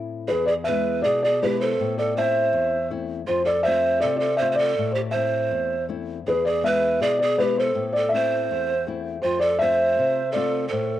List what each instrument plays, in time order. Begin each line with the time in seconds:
Already playing: nylon-string guitar A2 A3 C4 E4
0.28 nylon-string guitar E2, pan flute G#4, felt piano B4
0.46 pan flute G#4, felt piano D5
0.64 nylon-string guitar B3, pan flute B4, felt piano E5
0.68 nylon-string guitar G#3 E4
1.02 nylon-string guitar B2, pan flute G#4, felt piano D5
1.23 pan flute G#4, felt piano D5
1.42 nylon-string guitar G#3 B3 E4, pan flute G4, felt piano B4
1.60 pan flute A4, felt piano C5
1.80 nylon-string guitar A2
1.98 pan flute A4, felt piano D5
2.17 nylon-string guitar A3 C4 E4, pan flute C5, felt piano E5
2.53 nylon-string guitar E2
2.90 nylon-string guitar A3 C4 E4
3.27 nylon-string guitar F2, pan flute F4, felt piano C5
3.45 pan flute A4, felt piano D5
3.63 nylon-string guitar A3, pan flute C5, felt piano E5
3.67 nylon-string guitar C4 F4
4.00 pan flute A4, felt piano D5
4.04 nylon-string guitar C3
4.16 pan flute A4, felt piano D5
4.37 pan flute C5, felt piano E5
4.41 nylon-string guitar A3 C4 F4
4.49 pan flute C5, felt piano E5
4.55 pan flute A4, felt piano D5
4.78 nylon-string guitar A2
4.91 pan flute G4, felt piano C5
5.11 pan flute C5, felt piano E5
5.15 nylon-string guitar A3 C4 E4
5.51 nylon-string guitar E2
5.89 nylon-string guitar A3 C4 E4
6.27 nylon-string guitar E2, pan flute G#4, felt piano B4
6.45 pan flute G#4, felt piano D5
6.63 nylon-string guitar G#3 B3 E4, pan flute B4, felt piano E5
7.00 nylon-string guitar B2, pan flute G#4, felt piano D5
7.19 pan flute G#4, felt piano D5
7.37 nylon-string guitar G#3 B3 E4, pan flute G4, felt piano B4
7.57 pan flute A4, felt piano C5
7.75 nylon-string guitar A2
7.93 pan flute A4, felt piano D5
8.09 nylon-string guitar A3, felt piano E5
8.14 nylon-string guitar C4 E4, pan flute C5
8.51 nylon-string guitar E2
8.87 nylon-string guitar A3 C4 E4
9.22 nylon-string guitar F2, pan flute F4, felt piano C5
9.39 pan flute A4, felt piano D5
9.59 nylon-string guitar A3 C4 F4, pan flute C5, felt piano E5
9.99 nylon-string guitar C3
10.32 nylon-string guitar A3 C4, pan flute A4, felt piano D5
10.37 nylon-string guitar F4
10.68 nylon-string guitar A2, pan flute A4, felt piano C5